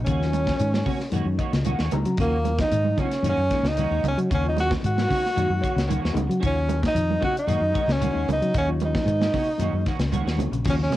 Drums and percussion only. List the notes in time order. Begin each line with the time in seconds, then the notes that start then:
0.06 kick, closed hi-hat, high conga, shekere
0.22 snare
0.33 closed hi-hat, high conga, shekere
0.47 kick, snare, low conga
0.59 closed hi-hat, high conga, shekere
0.74 snare, high conga
0.86 kick, open hi-hat, low conga, shekere
1.00 snare
1.12 closed hi-hat, high conga, shekere
1.39 kick, closed hi-hat, shekere
1.53 snare, closed hi-hat
1.64 closed hi-hat, high conga, shekere
1.79 snare
1.91 closed hi-hat, high conga, low conga, shekere
2.05 closed hi-hat
2.17 kick, closed hi-hat, high conga, shekere
2.45 closed hi-hat, high conga, shekere
2.58 kick, snare, closed hi-hat, low conga
2.71 closed hi-hat, high conga, shekere
2.85 high conga
2.97 kick, closed hi-hat, low conga, shekere
3.11 snare, closed hi-hat
3.24 closed hi-hat, high conga, shekere
3.50 kick, snare, closed hi-hat, shekere
3.65 snare
3.77 closed hi-hat, high conga, shekere
4.04 closed hi-hat, high conga, low conga, shekere
4.18 closed hi-hat
4.31 kick, closed hi-hat, high conga, shekere
4.57 snare, closed hi-hat, high conga, shekere
4.71 kick, snare, low conga
4.84 closed hi-hat, high conga, shekere
4.98 snare, high conga
5.11 kick, snare, open hi-hat, high conga, low conga, shekere
5.26 snare
5.37 closed hi-hat, high conga, shekere
5.64 kick, closed hi-hat, shekere
5.78 snare, closed hi-hat
5.90 closed hi-hat, high conga, shekere
6.05 snare
6.16 closed hi-hat, high conga, low conga, shekere
6.31 closed hi-hat
6.42 kick, closed hi-hat, high conga, shekere
6.69 closed hi-hat, high conga, shekere
6.83 kick, snare, closed hi-hat
6.96 closed hi-hat, high conga, shekere
7.10 high conga
7.22 kick, closed hi-hat, low conga, shekere
7.37 closed hi-hat
7.48 closed hi-hat, shekere
7.75 kick, closed hi-hat, shekere
7.89 snare
8.02 closed hi-hat, high conga, shekere
8.28 closed hi-hat, high conga, low conga, shekere
8.42 closed hi-hat
8.54 kick, closed hi-hat, shekere
8.80 closed hi-hat, high conga, shekere
8.95 kick, snare
9.07 closed hi-hat, high conga, shekere
9.21 snare, high conga
9.34 kick, open hi-hat, low conga, shekere
9.59 closed hi-hat, high conga, shekere
9.86 kick, snare, closed hi-hat, shekere
9.99 snare, closed hi-hat
10.12 closed hi-hat, high conga, shekere
10.28 snare
10.39 closed hi-hat, high conga, low conga, shekere
10.53 closed hi-hat
10.64 kick, crash, high conga, shekere
10.92 snare, closed hi-hat, high conga